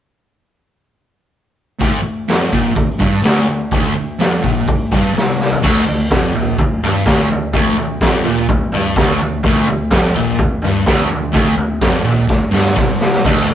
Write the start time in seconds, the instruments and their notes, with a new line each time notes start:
1.80 distorted electric guitar D2, bass clarinet D2, kick, open hi-hat
2.03 distorted electric guitar D2, bass clarinet D2
2.28 distorted electric guitar F2, bass clarinet F2, snare, open hi-hat
2.52 bass clarinet A#1, distorted electric guitar A#2, kick
2.75 distorted electric guitar D2, bass clarinet D2, kick, open hi-hat
2.99 distorted electric guitar G2, bass clarinet G2, kick
3.22 distorted electric guitar D2, bass clarinet D2, snare, open hi-hat
3.49 distorted electric guitar D2, bass clarinet D2
3.71 distorted electric guitar D2, bass clarinet D2, kick, open hi-hat
3.96 distorted electric guitar D2, bass clarinet D2
4.19 distorted electric guitar F2, bass clarinet F2, snare, open hi-hat
4.42 bass clarinet A#1, distorted electric guitar A#2, kick
4.67 bass clarinet D2, distorted electric guitar D2, kick, open hi-hat
4.91 distorted electric guitar G2, bass clarinet G2, kick
5.14 bass clarinet C2, distorted electric guitar C3, snare, open hi-hat
5.40 snare
5.52 floor tom
5.63 distorted electric guitar D2, bass clarinet D2, kick, floor tom, crash
5.87 distorted electric guitar D2, bass clarinet D2, floor tom
6.10 bass clarinet F2, distorted electric guitar F2, kick, snare, floor tom
6.34 bass clarinet A#1, distorted electric guitar A#2, floor tom
6.58 bass clarinet D2, distorted electric guitar D2, kick, floor tom
6.83 bass clarinet G2, distorted electric guitar G2, floor tom
7.05 bass clarinet D2, distorted electric guitar D2, kick, snare, floor tom
7.30 distorted electric guitar D2, bass clarinet D2, floor tom
7.53 distorted electric guitar D2, bass clarinet D2, kick, floor tom
7.77 bass clarinet D2, distorted electric guitar D2, floor tom
8.01 bass clarinet F2, distorted electric guitar F2, kick, snare, floor tom
8.25 distorted electric guitar A#2, floor tom
8.49 distorted electric guitar D2, bass clarinet D2, kick, floor tom
8.72 bass clarinet G2, distorted electric guitar G2, floor tom
8.96 bass clarinet D2, distorted electric guitar D2, kick, snare, floor tom
9.19 bass clarinet D2, distorted electric guitar D2, floor tom
9.43 bass clarinet D2, distorted electric guitar D2, kick, floor tom
9.66 bass clarinet D2, floor tom
9.70 distorted electric guitar D2
9.91 bass clarinet F2, distorted electric guitar F2, kick, snare, floor tom
10.14 bass clarinet A#1, distorted electric guitar A#2, floor tom
10.39 bass clarinet D2, distorted electric guitar D2, kick, floor tom
10.62 bass clarinet G2, distorted electric guitar G2, floor tom
10.86 bass clarinet D2, distorted electric guitar D2, kick, snare, floor tom
11.10 distorted electric guitar D2, bass clarinet D2, floor tom
11.32 distorted electric guitar D2, bass clarinet D2, kick, floor tom
11.57 distorted electric guitar D2, bass clarinet D2, floor tom
11.81 distorted electric guitar F2, bass clarinet F2, kick, snare, floor tom
12.04 bass clarinet A#1, distorted electric guitar A#2, floor tom
12.27 distorted electric guitar D2, bass clarinet D2, kick, snare
12.51 distorted electric guitar G2, snare
12.56 bass clarinet G2
12.64 snare
12.77 bass clarinet C2, distorted electric guitar C3, kick, snare
13.01 snare
13.13 snare
13.24 distorted electric guitar D2, bass clarinet D2, kick, floor tom, crash
13.49 distorted electric guitar D2, floor tom